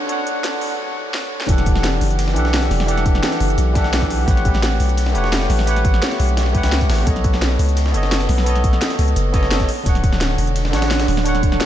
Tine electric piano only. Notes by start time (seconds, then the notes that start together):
Already playing: D3 D4 C#5 F#5
0.06 D3 D4 C#5
0.12 F#5
1.46 E3 D4 G4
1.51 A4 F#5
2.33 E3 D4 G4
2.38 A4 F#5
2.86 E3 D4 G4
2.90 A4 F#5
3.73 E3 D4 G4
3.77 A4 F#5
4.25 A3 G4 B4
4.29 C#5 F#5
5.12 A3 G4 B4
5.17 C#5 F#5
5.65 A3 G4 B4
5.69 C#5 F#5
6.52 A3 G4 B4
6.56 C#5 F#5
7.04 B3 A4 C#5
7.10 D#5
7.92 B3 A4 C#5
7.97 D#5
8.44 B3 A4 C#5
8.50 D#5
9.33 B3 A4 C#5 D#5
9.83 D3 D4 C#5
9.89 F#5
10.70 D3 D4 C#5
10.76 F#5
11.23 D3 D4 C#5
11.28 F#5